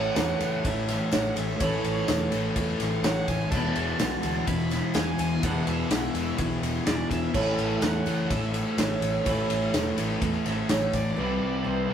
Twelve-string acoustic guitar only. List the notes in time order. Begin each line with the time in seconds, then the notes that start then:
Already playing: A4 C#5
0.16 A4
0.64 A4
1.12 C#5
1.60 C#5
2.08 A4
2.56 A4
3.04 C#5
3.52 A5
4.00 F#4
4.47 E4
4.96 G#4
5.44 A5
5.91 F#4
6.39 E4
6.87 G#4
7.34 C#5
7.83 A4
8.31 A4
8.79 C#5
9.26 C#5
9.74 A4
10.22 A4
10.70 C#5
11.16 B4
11.64 G4